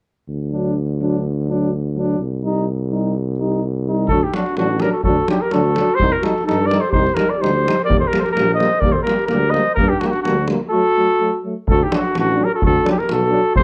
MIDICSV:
0, 0, Header, 1, 7, 480
1, 0, Start_track
1, 0, Tempo, 474308
1, 287, Time_signature, 2, 2, 24, 8
1, 13798, End_track
2, 0, Start_track
2, 0, Title_t, "Trumpet"
2, 0, Program_c, 0, 56
2, 4133, Note_on_c, 0, 69, 88
2, 4284, Note_on_c, 0, 67, 69
2, 4299, Note_off_c, 0, 69, 0
2, 4400, Note_on_c, 0, 66, 65
2, 4415, Note_off_c, 0, 67, 0
2, 4624, Note_off_c, 0, 66, 0
2, 4630, Note_on_c, 0, 66, 72
2, 4865, Note_on_c, 0, 70, 77
2, 4880, Note_off_c, 0, 66, 0
2, 4976, Note_off_c, 0, 70, 0
2, 4982, Note_on_c, 0, 69, 54
2, 5094, Note_off_c, 0, 69, 0
2, 5099, Note_on_c, 0, 69, 78
2, 5327, Note_off_c, 0, 69, 0
2, 5369, Note_on_c, 0, 67, 69
2, 5479, Note_on_c, 0, 70, 66
2, 5494, Note_off_c, 0, 67, 0
2, 5590, Note_on_c, 0, 69, 88
2, 5605, Note_off_c, 0, 70, 0
2, 6022, Note_on_c, 0, 72, 108
2, 6037, Note_off_c, 0, 69, 0
2, 6194, Note_on_c, 0, 70, 89
2, 6210, Note_off_c, 0, 72, 0
2, 6312, Note_on_c, 0, 69, 78
2, 6327, Note_off_c, 0, 70, 0
2, 6534, Note_off_c, 0, 69, 0
2, 6540, Note_on_c, 0, 69, 86
2, 6741, Note_on_c, 0, 74, 99
2, 6756, Note_off_c, 0, 69, 0
2, 6888, Note_on_c, 0, 72, 72
2, 6903, Note_off_c, 0, 74, 0
2, 6996, Note_off_c, 0, 72, 0
2, 7002, Note_on_c, 0, 72, 94
2, 7231, Note_on_c, 0, 70, 78
2, 7246, Note_off_c, 0, 72, 0
2, 7383, Note_on_c, 0, 74, 73
2, 7399, Note_off_c, 0, 70, 0
2, 7500, Note_on_c, 0, 72, 89
2, 7515, Note_off_c, 0, 74, 0
2, 7935, Note_off_c, 0, 72, 0
2, 7941, Note_on_c, 0, 74, 94
2, 8079, Note_off_c, 0, 74, 0
2, 8092, Note_on_c, 0, 72, 77
2, 8172, Note_on_c, 0, 70, 81
2, 8187, Note_off_c, 0, 72, 0
2, 8297, Note_on_c, 0, 72, 62
2, 8309, Note_off_c, 0, 70, 0
2, 8309, Note_on_c, 0, 70, 71
2, 8324, Note_off_c, 0, 72, 0
2, 8410, Note_off_c, 0, 70, 0
2, 8416, Note_on_c, 0, 70, 89
2, 8641, Note_off_c, 0, 70, 0
2, 8648, Note_on_c, 0, 75, 93
2, 8911, Note_on_c, 0, 74, 95
2, 8926, Note_off_c, 0, 75, 0
2, 9025, Note_on_c, 0, 72, 68
2, 9040, Note_off_c, 0, 74, 0
2, 9127, Note_off_c, 0, 72, 0
2, 9133, Note_on_c, 0, 70, 70
2, 9371, Note_off_c, 0, 70, 0
2, 9377, Note_on_c, 0, 70, 87
2, 9617, Note_on_c, 0, 75, 96
2, 9633, Note_off_c, 0, 70, 0
2, 9854, Note_off_c, 0, 75, 0
2, 9860, Note_on_c, 0, 70, 91
2, 10005, Note_on_c, 0, 67, 78
2, 10020, Note_off_c, 0, 70, 0
2, 10118, Note_on_c, 0, 66, 68
2, 10133, Note_off_c, 0, 67, 0
2, 10181, Note_on_c, 0, 67, 61
2, 10196, Note_off_c, 0, 66, 0
2, 10224, Note_on_c, 0, 66, 73
2, 10240, Note_off_c, 0, 67, 0
2, 10339, Note_off_c, 0, 66, 0
2, 10345, Note_on_c, 0, 66, 71
2, 10586, Note_off_c, 0, 66, 0
2, 10833, Note_on_c, 0, 69, 110
2, 11526, Note_off_c, 0, 69, 0
2, 11832, Note_on_c, 0, 69, 94
2, 11972, Note_on_c, 0, 67, 73
2, 11987, Note_off_c, 0, 69, 0
2, 12103, Note_on_c, 0, 66, 73
2, 12118, Note_off_c, 0, 67, 0
2, 12320, Note_off_c, 0, 66, 0
2, 12347, Note_on_c, 0, 66, 86
2, 12595, Note_on_c, 0, 70, 76
2, 12610, Note_off_c, 0, 66, 0
2, 12691, Note_off_c, 0, 70, 0
2, 12699, Note_on_c, 0, 69, 66
2, 12788, Note_off_c, 0, 69, 0
2, 12812, Note_on_c, 0, 69, 87
2, 13017, Note_off_c, 0, 69, 0
2, 13061, Note_on_c, 0, 67, 71
2, 13143, Note_on_c, 0, 70, 69
2, 13158, Note_off_c, 0, 67, 0
2, 13281, Note_on_c, 0, 69, 90
2, 13297, Note_off_c, 0, 70, 0
2, 13716, Note_off_c, 0, 69, 0
2, 13722, Note_on_c, 0, 72, 113
2, 13798, Note_off_c, 0, 72, 0
2, 13798, End_track
3, 0, Start_track
3, 0, Title_t, "Clarinet"
3, 0, Program_c, 1, 71
3, 4144, Note_on_c, 1, 66, 77
3, 4271, Note_on_c, 1, 63, 62
3, 4286, Note_off_c, 1, 66, 0
3, 4401, Note_on_c, 1, 62, 50
3, 4416, Note_off_c, 1, 63, 0
3, 4635, Note_off_c, 1, 62, 0
3, 4640, Note_on_c, 1, 62, 68
3, 4848, Note_on_c, 1, 67, 63
3, 4863, Note_off_c, 1, 62, 0
3, 4969, Note_off_c, 1, 67, 0
3, 4975, Note_on_c, 1, 66, 59
3, 5085, Note_off_c, 1, 66, 0
3, 5091, Note_on_c, 1, 66, 75
3, 5323, Note_off_c, 1, 66, 0
3, 5338, Note_on_c, 1, 63, 65
3, 5489, Note_on_c, 1, 67, 63
3, 5504, Note_off_c, 1, 63, 0
3, 5568, Note_on_c, 1, 66, 79
3, 5584, Note_off_c, 1, 67, 0
3, 6036, Note_on_c, 1, 67, 85
3, 6051, Note_off_c, 1, 66, 0
3, 6161, Note_off_c, 1, 67, 0
3, 6161, Note_on_c, 1, 67, 61
3, 6253, Note_on_c, 1, 66, 68
3, 6268, Note_off_c, 1, 67, 0
3, 6506, Note_off_c, 1, 66, 0
3, 6513, Note_on_c, 1, 63, 72
3, 6763, Note_on_c, 1, 70, 71
3, 6779, Note_off_c, 1, 63, 0
3, 6862, Note_on_c, 1, 69, 71
3, 6877, Note_off_c, 1, 70, 0
3, 6973, Note_off_c, 1, 69, 0
3, 6979, Note_on_c, 1, 67, 94
3, 7251, Note_off_c, 1, 67, 0
3, 7251, Note_on_c, 1, 67, 61
3, 7342, Note_on_c, 1, 70, 78
3, 7357, Note_off_c, 1, 67, 0
3, 7462, Note_on_c, 1, 67, 77
3, 7477, Note_off_c, 1, 70, 0
3, 7919, Note_off_c, 1, 67, 0
3, 7925, Note_on_c, 1, 70, 87
3, 8065, Note_off_c, 1, 70, 0
3, 8071, Note_on_c, 1, 69, 63
3, 8178, Note_on_c, 1, 67, 69
3, 8193, Note_off_c, 1, 69, 0
3, 8288, Note_on_c, 1, 69, 60
3, 8303, Note_off_c, 1, 67, 0
3, 8322, Note_on_c, 1, 67, 74
3, 8337, Note_off_c, 1, 69, 0
3, 8431, Note_off_c, 1, 67, 0
3, 8437, Note_on_c, 1, 67, 75
3, 8664, Note_off_c, 1, 67, 0
3, 8670, Note_on_c, 1, 72, 83
3, 8900, Note_on_c, 1, 70, 95
3, 8915, Note_off_c, 1, 72, 0
3, 9053, Note_on_c, 1, 69, 61
3, 9069, Note_off_c, 1, 70, 0
3, 9147, Note_off_c, 1, 69, 0
3, 9154, Note_on_c, 1, 67, 70
3, 9391, Note_off_c, 1, 67, 0
3, 9398, Note_on_c, 1, 67, 77
3, 9648, Note_on_c, 1, 72, 74
3, 9663, Note_off_c, 1, 67, 0
3, 9885, Note_off_c, 1, 72, 0
3, 9891, Note_on_c, 1, 67, 79
3, 10015, Note_on_c, 1, 63, 58
3, 10030, Note_off_c, 1, 67, 0
3, 10117, Note_on_c, 1, 62, 55
3, 10132, Note_off_c, 1, 63, 0
3, 10189, Note_on_c, 1, 63, 48
3, 10205, Note_off_c, 1, 62, 0
3, 10246, Note_on_c, 1, 62, 66
3, 10261, Note_off_c, 1, 63, 0
3, 10326, Note_off_c, 1, 62, 0
3, 10332, Note_on_c, 1, 62, 65
3, 10579, Note_off_c, 1, 62, 0
3, 10841, Note_on_c, 1, 66, 97
3, 11530, Note_off_c, 1, 66, 0
3, 11841, Note_on_c, 1, 66, 85
3, 11971, Note_on_c, 1, 63, 60
3, 11986, Note_off_c, 1, 66, 0
3, 12085, Note_on_c, 1, 62, 51
3, 12100, Note_off_c, 1, 63, 0
3, 12311, Note_off_c, 1, 62, 0
3, 12333, Note_on_c, 1, 62, 70
3, 12589, Note_on_c, 1, 67, 65
3, 12604, Note_off_c, 1, 62, 0
3, 12688, Note_off_c, 1, 67, 0
3, 12693, Note_on_c, 1, 66, 61
3, 12778, Note_off_c, 1, 66, 0
3, 12784, Note_on_c, 1, 66, 86
3, 13002, Note_off_c, 1, 66, 0
3, 13035, Note_on_c, 1, 63, 63
3, 13173, Note_on_c, 1, 67, 58
3, 13189, Note_off_c, 1, 63, 0
3, 13246, Note_on_c, 1, 66, 74
3, 13261, Note_off_c, 1, 67, 0
3, 13726, Note_off_c, 1, 66, 0
3, 13743, Note_on_c, 1, 67, 86
3, 13798, Note_off_c, 1, 67, 0
3, 13798, End_track
4, 0, Start_track
4, 0, Title_t, "Trombone"
4, 0, Program_c, 2, 57
4, 530, Note_on_c, 2, 62, 46
4, 766, Note_off_c, 2, 62, 0
4, 1029, Note_on_c, 2, 62, 51
4, 1258, Note_off_c, 2, 62, 0
4, 1505, Note_on_c, 2, 62, 54
4, 1738, Note_off_c, 2, 62, 0
4, 2006, Note_on_c, 2, 62, 53
4, 2230, Note_off_c, 2, 62, 0
4, 2472, Note_on_c, 2, 63, 60
4, 2704, Note_off_c, 2, 63, 0
4, 2955, Note_on_c, 2, 63, 46
4, 3186, Note_off_c, 2, 63, 0
4, 3434, Note_on_c, 2, 63, 50
4, 3667, Note_off_c, 2, 63, 0
4, 3921, Note_on_c, 2, 63, 49
4, 4150, Note_off_c, 2, 63, 0
4, 4171, Note_on_c, 2, 62, 45
4, 4263, Note_off_c, 2, 62, 0
4, 4408, Note_on_c, 2, 62, 58
4, 4500, Note_off_c, 2, 62, 0
4, 4650, Note_on_c, 2, 62, 58
4, 4742, Note_off_c, 2, 62, 0
4, 4894, Note_on_c, 2, 62, 54
4, 4985, Note_off_c, 2, 62, 0
4, 5143, Note_on_c, 2, 62, 59
4, 5233, Note_off_c, 2, 62, 0
4, 5354, Note_on_c, 2, 62, 55
4, 5449, Note_off_c, 2, 62, 0
4, 5601, Note_on_c, 2, 62, 61
4, 5694, Note_off_c, 2, 62, 0
4, 5853, Note_on_c, 2, 62, 66
4, 5944, Note_off_c, 2, 62, 0
4, 6090, Note_on_c, 2, 63, 63
4, 6181, Note_off_c, 2, 63, 0
4, 6310, Note_on_c, 2, 63, 63
4, 6406, Note_off_c, 2, 63, 0
4, 6559, Note_on_c, 2, 63, 62
4, 6652, Note_off_c, 2, 63, 0
4, 6798, Note_on_c, 2, 63, 66
4, 6892, Note_off_c, 2, 63, 0
4, 7016, Note_on_c, 2, 63, 59
4, 7114, Note_off_c, 2, 63, 0
4, 7271, Note_on_c, 2, 63, 54
4, 7366, Note_off_c, 2, 63, 0
4, 7492, Note_on_c, 2, 63, 54
4, 7591, Note_off_c, 2, 63, 0
4, 7758, Note_on_c, 2, 63, 56
4, 7852, Note_off_c, 2, 63, 0
4, 7971, Note_on_c, 2, 58, 52
4, 8070, Note_off_c, 2, 58, 0
4, 8210, Note_on_c, 2, 58, 55
4, 8309, Note_off_c, 2, 58, 0
4, 8448, Note_on_c, 2, 58, 61
4, 8547, Note_off_c, 2, 58, 0
4, 8690, Note_on_c, 2, 58, 57
4, 8790, Note_off_c, 2, 58, 0
4, 8919, Note_on_c, 2, 58, 55
4, 9021, Note_off_c, 2, 58, 0
4, 9152, Note_on_c, 2, 58, 63
4, 9255, Note_off_c, 2, 58, 0
4, 9399, Note_on_c, 2, 58, 69
4, 9500, Note_off_c, 2, 58, 0
4, 9639, Note_on_c, 2, 58, 67
4, 9740, Note_off_c, 2, 58, 0
4, 9885, Note_on_c, 2, 58, 71
4, 9985, Note_off_c, 2, 58, 0
4, 10139, Note_on_c, 2, 58, 66
4, 10236, Note_off_c, 2, 58, 0
4, 10368, Note_on_c, 2, 58, 60
4, 10467, Note_off_c, 2, 58, 0
4, 10632, Note_on_c, 2, 58, 64
4, 10726, Note_off_c, 2, 58, 0
4, 10846, Note_on_c, 2, 57, 61
4, 10945, Note_off_c, 2, 57, 0
4, 11099, Note_on_c, 2, 57, 58
4, 11196, Note_off_c, 2, 57, 0
4, 11336, Note_on_c, 2, 57, 56
4, 11433, Note_off_c, 2, 57, 0
4, 11584, Note_on_c, 2, 57, 49
4, 11679, Note_off_c, 2, 57, 0
4, 12055, Note_on_c, 2, 62, 53
4, 12151, Note_off_c, 2, 62, 0
4, 12504, Note_on_c, 2, 62, 61
4, 12606, Note_off_c, 2, 62, 0
4, 12997, Note_on_c, 2, 62, 69
4, 13096, Note_off_c, 2, 62, 0
4, 13469, Note_on_c, 2, 62, 65
4, 13569, Note_off_c, 2, 62, 0
4, 13798, End_track
5, 0, Start_track
5, 0, Title_t, "Euphonium"
5, 0, Program_c, 3, 58
5, 528, Note_on_c, 3, 54, 46
5, 766, Note_off_c, 3, 54, 0
5, 1003, Note_on_c, 3, 54, 49
5, 1245, Note_off_c, 3, 54, 0
5, 1502, Note_on_c, 3, 54, 51
5, 1736, Note_off_c, 3, 54, 0
5, 1974, Note_on_c, 3, 54, 55
5, 2214, Note_off_c, 3, 54, 0
5, 2473, Note_on_c, 3, 55, 47
5, 2705, Note_off_c, 3, 55, 0
5, 2944, Note_on_c, 3, 55, 51
5, 3181, Note_off_c, 3, 55, 0
5, 3424, Note_on_c, 3, 55, 49
5, 3661, Note_off_c, 3, 55, 0
5, 3921, Note_on_c, 3, 55, 48
5, 4138, Note_off_c, 3, 55, 0
5, 4144, Note_on_c, 3, 54, 53
5, 4241, Note_off_c, 3, 54, 0
5, 4376, Note_on_c, 3, 54, 50
5, 4475, Note_off_c, 3, 54, 0
5, 4625, Note_on_c, 3, 54, 59
5, 4722, Note_off_c, 3, 54, 0
5, 4857, Note_on_c, 3, 54, 63
5, 4955, Note_off_c, 3, 54, 0
5, 5084, Note_on_c, 3, 54, 64
5, 5185, Note_off_c, 3, 54, 0
5, 5334, Note_on_c, 3, 54, 65
5, 5433, Note_off_c, 3, 54, 0
5, 5585, Note_on_c, 3, 54, 67
5, 5682, Note_off_c, 3, 54, 0
5, 5821, Note_on_c, 3, 54, 66
5, 5918, Note_off_c, 3, 54, 0
5, 6061, Note_on_c, 3, 55, 68
5, 6158, Note_off_c, 3, 55, 0
5, 6303, Note_on_c, 3, 55, 61
5, 6400, Note_off_c, 3, 55, 0
5, 6550, Note_on_c, 3, 55, 63
5, 6645, Note_off_c, 3, 55, 0
5, 6792, Note_on_c, 3, 55, 61
5, 6887, Note_off_c, 3, 55, 0
5, 7042, Note_on_c, 3, 55, 66
5, 7135, Note_off_c, 3, 55, 0
5, 7251, Note_on_c, 3, 55, 53
5, 7350, Note_off_c, 3, 55, 0
5, 7513, Note_on_c, 3, 55, 57
5, 7608, Note_off_c, 3, 55, 0
5, 7750, Note_on_c, 3, 55, 52
5, 7845, Note_off_c, 3, 55, 0
5, 7978, Note_on_c, 3, 55, 52
5, 8076, Note_off_c, 3, 55, 0
5, 8229, Note_on_c, 3, 55, 49
5, 8325, Note_off_c, 3, 55, 0
5, 8468, Note_on_c, 3, 55, 59
5, 8563, Note_off_c, 3, 55, 0
5, 8704, Note_on_c, 3, 55, 67
5, 8800, Note_off_c, 3, 55, 0
5, 8951, Note_on_c, 3, 55, 61
5, 9046, Note_off_c, 3, 55, 0
5, 9197, Note_on_c, 3, 55, 64
5, 9291, Note_off_c, 3, 55, 0
5, 9440, Note_on_c, 3, 55, 74
5, 9533, Note_off_c, 3, 55, 0
5, 9671, Note_on_c, 3, 55, 63
5, 9766, Note_off_c, 3, 55, 0
5, 9920, Note_on_c, 3, 55, 68
5, 10013, Note_off_c, 3, 55, 0
5, 10140, Note_on_c, 3, 55, 58
5, 10236, Note_off_c, 3, 55, 0
5, 10392, Note_on_c, 3, 55, 63
5, 10486, Note_off_c, 3, 55, 0
5, 10610, Note_on_c, 3, 55, 60
5, 10709, Note_off_c, 3, 55, 0
5, 10863, Note_on_c, 3, 54, 69
5, 10959, Note_off_c, 3, 54, 0
5, 11112, Note_on_c, 3, 54, 56
5, 11206, Note_off_c, 3, 54, 0
5, 11339, Note_on_c, 3, 54, 58
5, 11436, Note_off_c, 3, 54, 0
5, 11575, Note_on_c, 3, 54, 49
5, 11672, Note_off_c, 3, 54, 0
5, 12064, Note_on_c, 3, 54, 54
5, 12158, Note_off_c, 3, 54, 0
5, 12531, Note_on_c, 3, 54, 65
5, 12628, Note_off_c, 3, 54, 0
5, 13011, Note_on_c, 3, 54, 68
5, 13107, Note_off_c, 3, 54, 0
5, 13478, Note_on_c, 3, 54, 69
5, 13576, Note_off_c, 3, 54, 0
5, 13798, End_track
6, 0, Start_track
6, 0, Title_t, "Tuba"
6, 0, Program_c, 4, 58
6, 286, Note_on_c, 4, 38, 64
6, 2182, Note_off_c, 4, 38, 0
6, 2225, Note_on_c, 4, 36, 59
6, 4112, Note_off_c, 4, 36, 0
6, 4163, Note_on_c, 4, 38, 81
6, 4291, Note_off_c, 4, 38, 0
6, 4631, Note_on_c, 4, 33, 81
6, 4895, Note_off_c, 4, 33, 0
6, 5131, Note_on_c, 4, 38, 82
6, 5257, Note_off_c, 4, 38, 0
6, 5609, Note_on_c, 4, 38, 81
6, 5867, Note_off_c, 4, 38, 0
6, 6095, Note_on_c, 4, 36, 91
6, 6219, Note_off_c, 4, 36, 0
6, 6583, Note_on_c, 4, 43, 88
6, 6837, Note_off_c, 4, 43, 0
6, 7043, Note_on_c, 4, 36, 82
6, 7170, Note_off_c, 4, 36, 0
6, 7525, Note_on_c, 4, 38, 78
6, 7784, Note_off_c, 4, 38, 0
6, 8001, Note_on_c, 4, 39, 89
6, 8129, Note_off_c, 4, 39, 0
6, 8487, Note_on_c, 4, 34, 78
6, 8745, Note_off_c, 4, 34, 0
6, 8954, Note_on_c, 4, 39, 77
6, 9084, Note_off_c, 4, 39, 0
6, 9437, Note_on_c, 4, 38, 81
6, 9697, Note_off_c, 4, 38, 0
6, 9928, Note_on_c, 4, 43, 90
6, 10054, Note_off_c, 4, 43, 0
6, 10410, Note_on_c, 4, 38, 81
6, 10667, Note_off_c, 4, 38, 0
6, 11841, Note_on_c, 4, 38, 95
6, 11967, Note_off_c, 4, 38, 0
6, 12316, Note_on_c, 4, 33, 81
6, 12574, Note_off_c, 4, 33, 0
6, 12805, Note_on_c, 4, 38, 89
6, 12928, Note_off_c, 4, 38, 0
6, 13270, Note_on_c, 4, 35, 79
6, 13527, Note_off_c, 4, 35, 0
6, 13743, Note_on_c, 4, 36, 78
6, 13798, Note_off_c, 4, 36, 0
6, 13798, End_track
7, 0, Start_track
7, 0, Title_t, "Davul"
7, 4130, Note_on_c, 9, 43, 64
7, 4232, Note_off_c, 9, 43, 0
7, 4388, Note_on_c, 9, 37, 63
7, 4489, Note_off_c, 9, 37, 0
7, 4516, Note_on_c, 9, 37, 22
7, 4617, Note_off_c, 9, 37, 0
7, 4622, Note_on_c, 9, 37, 51
7, 4723, Note_off_c, 9, 37, 0
7, 4852, Note_on_c, 9, 37, 54
7, 4954, Note_off_c, 9, 37, 0
7, 5095, Note_on_c, 9, 43, 69
7, 5197, Note_off_c, 9, 43, 0
7, 5345, Note_on_c, 9, 37, 62
7, 5446, Note_off_c, 9, 37, 0
7, 5580, Note_on_c, 9, 37, 51
7, 5681, Note_off_c, 9, 37, 0
7, 5830, Note_on_c, 9, 37, 55
7, 5931, Note_off_c, 9, 37, 0
7, 6068, Note_on_c, 9, 43, 72
7, 6169, Note_off_c, 9, 43, 0
7, 6307, Note_on_c, 9, 37, 66
7, 6408, Note_off_c, 9, 37, 0
7, 6457, Note_on_c, 9, 37, 23
7, 6558, Note_off_c, 9, 37, 0
7, 6565, Note_on_c, 9, 37, 54
7, 6666, Note_off_c, 9, 37, 0
7, 6793, Note_on_c, 9, 37, 59
7, 6895, Note_off_c, 9, 37, 0
7, 7010, Note_on_c, 9, 43, 81
7, 7111, Note_off_c, 9, 43, 0
7, 7152, Note_on_c, 9, 37, 24
7, 7252, Note_off_c, 9, 37, 0
7, 7252, Note_on_c, 9, 37, 66
7, 7354, Note_off_c, 9, 37, 0
7, 7527, Note_on_c, 9, 37, 58
7, 7628, Note_off_c, 9, 37, 0
7, 7773, Note_on_c, 9, 37, 72
7, 7874, Note_off_c, 9, 37, 0
7, 7888, Note_on_c, 9, 37, 26
7, 7989, Note_off_c, 9, 37, 0
7, 7997, Note_on_c, 9, 43, 86
7, 8098, Note_off_c, 9, 43, 0
7, 8229, Note_on_c, 9, 37, 73
7, 8330, Note_off_c, 9, 37, 0
7, 8360, Note_on_c, 9, 37, 28
7, 8461, Note_off_c, 9, 37, 0
7, 8470, Note_on_c, 9, 37, 62
7, 8571, Note_off_c, 9, 37, 0
7, 8706, Note_on_c, 9, 37, 59
7, 8807, Note_off_c, 9, 37, 0
7, 8922, Note_on_c, 9, 43, 79
7, 9023, Note_off_c, 9, 43, 0
7, 9179, Note_on_c, 9, 37, 66
7, 9280, Note_off_c, 9, 37, 0
7, 9302, Note_on_c, 9, 37, 22
7, 9396, Note_off_c, 9, 37, 0
7, 9396, Note_on_c, 9, 37, 57
7, 9497, Note_off_c, 9, 37, 0
7, 9655, Note_on_c, 9, 37, 47
7, 9756, Note_off_c, 9, 37, 0
7, 9887, Note_on_c, 9, 43, 77
7, 9988, Note_off_c, 9, 43, 0
7, 10129, Note_on_c, 9, 37, 57
7, 10230, Note_off_c, 9, 37, 0
7, 10252, Note_on_c, 9, 37, 24
7, 10353, Note_off_c, 9, 37, 0
7, 10375, Note_on_c, 9, 37, 62
7, 10476, Note_off_c, 9, 37, 0
7, 10603, Note_on_c, 9, 37, 59
7, 10704, Note_off_c, 9, 37, 0
7, 11816, Note_on_c, 9, 43, 88
7, 11917, Note_off_c, 9, 43, 0
7, 12063, Note_on_c, 9, 37, 77
7, 12164, Note_off_c, 9, 37, 0
7, 12197, Note_on_c, 9, 37, 24
7, 12298, Note_off_c, 9, 37, 0
7, 12299, Note_on_c, 9, 37, 62
7, 12400, Note_off_c, 9, 37, 0
7, 12773, Note_on_c, 9, 43, 88
7, 12874, Note_off_c, 9, 43, 0
7, 13017, Note_on_c, 9, 37, 66
7, 13119, Note_off_c, 9, 37, 0
7, 13158, Note_on_c, 9, 37, 24
7, 13248, Note_off_c, 9, 37, 0
7, 13248, Note_on_c, 9, 37, 61
7, 13350, Note_off_c, 9, 37, 0
7, 13721, Note_on_c, 9, 43, 90
7, 13798, Note_off_c, 9, 43, 0
7, 13798, End_track
0, 0, End_of_file